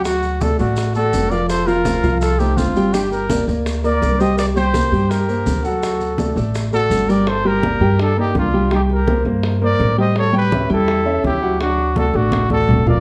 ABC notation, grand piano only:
X:1
M:4/4
L:1/8
Q:1/4=166
K:Gm
V:1 name="Grand piano"
[^F,^F]2 [A,Ad] [A,Ad]2 [A,Ad]2 [=F,=Ff]- | [F,Ff] [F,Ff] [A,Ac] [F,Ff]2 [A,Ac]2 [G,Gg] | [G,Gg]2 [B,Bd] [B,Bd]2 [B,Bd]2 [G,Gg]- | [G,Gg] [G,Gg] [B,Bc] [G,Gg]2 [B,Bc]2 [^F,^F^f] |
[^F,^F^f]2 [A,Ad] [A,Ad]2 [A,Ad]2 [G,Gg] | z [G,Gg] [B,Bd] [G,Gg]2 [B,Bd]2 [G,Gg] | [G,Gg]2 [B,Bc] [B,Bc]2 [B,Bc]2 [G,Gg]- | [G,Gg] [G,Gg] [^C^c=e] [G,Gg]2 [Cce]2 [^F,^F^f] |
[^F,^F^f]2 [A,Ad] [A,Ad]2 [A,Ad]2 [=F,=F=f] |]